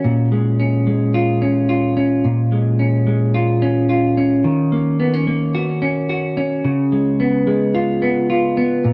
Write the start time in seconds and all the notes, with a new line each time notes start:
Already playing: A#3 C#4
0.04 A#2
0.32 G#3
0.60 C#4
0.87 G#3
1.14 F4
1.42 C#4
1.69 F4
1.97 C#4
2.25 A#2
2.52 G#3
2.79 C#4
3.07 G#3
3.34 F4
3.62 C#4
3.89 F4
4.17 C#4
4.44 D#3
4.72 A#3
5.00 B3
5.14 C#4
5.27 A#3
5.55 F#4
5.82 C#4
6.09 F#4
6.37 C#4
6.65 C#3
6.92 G#3
7.20 B3
7.47 G#3
7.75 F4
8.02 B3
8.30 F4
8.57 B3
8.84 A#2